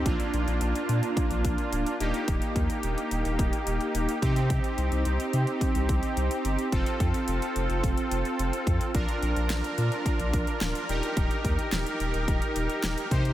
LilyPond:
<<
  \new Staff \with { instrumentName = "Analog polysynth" } { \time 4/4 \key ees \lydian \tempo 4 = 108 <bes d' f'>2.~ <bes d' f'>8 <bes ees' g'>8~ | <bes ees' g'>2.~ <bes ees' g'>8 <c' ees' g'>8~ | <c' ees' g'>1 | <c' f' a'>1 |
<d' f' bes'>2.~ <d' f' bes'>8 <ees' g' bes'>8~ | <ees' g' bes'>2.~ <ees' g' bes'>8 <ees' g' c''>8 | }
  \new Staff \with { instrumentName = "Sub bass" } { \clef bass \time 4/4 \key ees \lydian bes,,16 r16 bes,,16 bes,,16 bes,,16 r16 bes,16 r8 bes,,16 bes,,16 r16 d,,16 r16 ees,,16 r16 | ees,,16 r16 ees,16 r16 ees,,16 r16 ees,,16 ees,,16 ees,,16 r16 ees,,16 r16 ees,,16 r16 c8~ | c16 r16 c,16 c,16 c,16 r16 c16 r8 c,16 c,16 r16 c,16 r16 g,,16 r16 | f,,16 r16 f,16 r16 f,,16 r16 f,,16 f,,16 f,,16 r16 f,,16 r16 f,,16 r16 f,16 r16 |
bes,,16 r16 bes,,16 bes,,16 bes,,16 r16 bes,16 r8 bes,,16 bes,,16 r16 d,,16 r16 ees,,16 r16 | ees,,16 r16 ees,16 r16 ees,,16 r16 ees,,16 ees,,16 ees,,16 r16 ees,,16 r16 ees,,16 r16 c8 | }
  \new DrumStaff \with { instrumentName = "Drums" } \drummode { \time 4/4 <hh bd>16 hh16 hh16 hh16 hh16 hh16 hh16 hh16 <hh bd>16 hh16 <hh bd>16 hh16 hh16 hh16 hh16 hh16 | <hh bd>16 hh16 <hh bd>16 hh16 hh16 hh16 hh16 hh16 <hh bd>16 hh16 hh16 hh16 hh16 hh16 <hh bd>16 hh16 | <hh bd>16 hh16 hh16 hh16 hh16 hh16 hh16 hh16 <hh bd>16 hh16 <hh bd>16 hh16 hh16 hh16 hh16 hh16 | <hh bd>16 hh16 <hh bd>16 hh16 hh16 hh16 hh16 hh16 <hh bd>16 hh16 hh16 hh16 hh16 hh16 <hh bd>16 hh16 |
<hh bd>16 hh16 hh16 hh16 <hh sn>16 hh16 hh16 hh16 <hh bd>16 hh16 <hh bd>16 hh16 <hh sn>16 hh16 hh16 hh16 | <hh bd>16 hh16 <hh bd>16 hh16 <hh sn>16 hh16 hh16 hh16 <hh bd>16 hh16 hh16 hh16 <hh sn>16 hh16 <hh bd>16 hh16 | }
>>